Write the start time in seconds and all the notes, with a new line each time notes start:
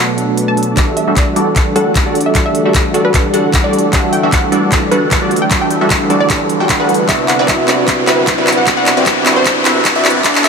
Already playing: B2 F#3 A3 D4 F#4 A4 B4 D5
0.17 B2 F#3 D4 A4, closed hi-hat
0.37 closed hi-hat
0.48 A5
0.56 B2 F#3 D4 A4, closed hi-hat
0.63 closed hi-hat
0.75 E1 D3 E3 G3 A3 D4 F#4 G4 A4 D5 E5 F#5, kick, clap, closed hi-hat, riser
0.97 E5, closed hi-hat
1.07 E1 G3 D4 F#4 A4 E5
1.16 D5, kick, clap, closed hi-hat
1.34 E1 E3 G3 D4 F#4 A4 D5, closed hi-hat
1.56 kick, clap, closed hi-hat
1.76 E1 G3 D4 F#4 A4 F#5, closed hi-hat
1.95 kick, clap, closed hi-hat
2.06 E1 G3 D4 F#4 A4 D5
2.15 closed hi-hat
2.21 closed hi-hat
2.26 E5
2.33 E1 E3 G3 D4 F#4 G4 A4 E5, kick, clap, closed hi-hat
2.37 A4
2.46 E5
2.55 closed hi-hat
2.65 E1 G3 D4 F#4 A4 E5
2.74 kick, clap, closed hi-hat
2.92 E1 E3 G3 D4 F#4 A4 D5, closed hi-hat
3.05 B4
3.14 kick, clap, closed hi-hat
3.33 E1 G3 D4 F#4 A4 F#5, closed hi-hat
3.53 kick, clap, closed hi-hat
3.64 E1 G3 D4 F#4 A4 D5
3.73 closed hi-hat
3.79 closed hi-hat
3.91 E1 E3 D4 F#4 G4 A4 E5 F#5, kick, clap, closed hi-hat
3.95 A4
4.13 G5, closed hi-hat
4.23 E1 G3 D4 F#4 A4 E5
4.32 F#5, kick, clap, closed hi-hat
4.50 E1 E3 G3 D4 F#4 A4 D5, closed hi-hat
4.72 kick, clap, closed hi-hat
4.91 E1 G3 D4 F#4 A4 B4 F#5, closed hi-hat
5.11 kick, clap, closed hi-hat
5.22 E1 G3 D4 F#4 A4 D5
5.31 closed hi-hat
5.36 closed hi-hat
5.42 G5
5.49 E1 E3 G3 D4 F#4 G4 A4 E5, kick, clap, closed hi-hat
5.53 A4
5.61 G5
5.71 closed hi-hat
5.81 E1 G3 D4 F#4 A4 E5
5.90 kick, clap, closed hi-hat
6.08 E1 E3 G3 D4 F#4 A4 D5, closed hi-hat
6.12 A4
6.20 D5
6.30 kick, clap, closed hi-hat
6.49 closed hi-hat
6.60 E1 G3 D4 F#4 A4 G5
6.69 kick, clap, closed hi-hat
6.80 E1 G3 D4 F#4 A4 B4 F#5
6.89 closed hi-hat
6.94 closed hi-hat
7.07 C2 C3 F#3 B3 C4 D4 E4 F#4 B4 D5 E5, kick, clap, closed hi-hat
7.11 F#4
7.28 F#5, clap, closed hi-hat
7.39 C2 C4 E4 F#4 B4 D5
7.48 E5, kick, clap, closed hi-hat
7.66 C2 C3 C4 D4 E4 F#4 B4 D5, clap, closed hi-hat
7.70 F#4
7.88 kick, clap, closed hi-hat
8.07 C2 C4 E4 F#4 B4 E5, clap, closed hi-hat
8.27 kick, clap, closed hi-hat
8.38 C2 C4 E4 F#4 B4 D5
8.47 clap, closed hi-hat
8.52 closed hi-hat
8.57 F#5
8.65 C2 C3 B3 D4 E4 F#4 B4 D5, kick, clap, closed hi-hat
8.77 F#5
8.86 clap, closed hi-hat
8.97 C2 C4 E4 F#4 B4 D5
9.06 kick, clap, closed hi-hat
9.24 C2 C3 C4 D4 E4 F#4 B4 D5, clap, closed hi-hat
9.28 F#4
9.36 C5
9.46 kick, clap, closed hi-hat
9.65 C2 C4 E4 F#4 B4 E5, clap, closed hi-hat
9.85 kick, clap, closed hi-hat
9.95 C2 C4 E4 F#4 B4 D5 E5
10.05 clap, closed hi-hat
10.10 closed hi-hat
10.22 B1 B2 A3 B3 D4 F#4 A4 D5, kick, clap, closed hi-hat
10.35 clap
10.44 E5, clap, closed hi-hat